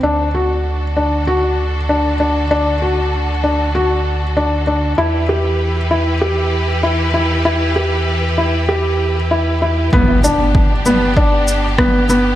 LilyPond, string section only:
\new Staff \with { instrumentName = "String section" } { \time 4/4 \key g \major \tempo 4 = 97 <d d' fis' a'>1~ | <d d' fis' a'>1 | <e e' g' b'>1~ | <e e' g' b'>1 |
<b d' g'>1 | }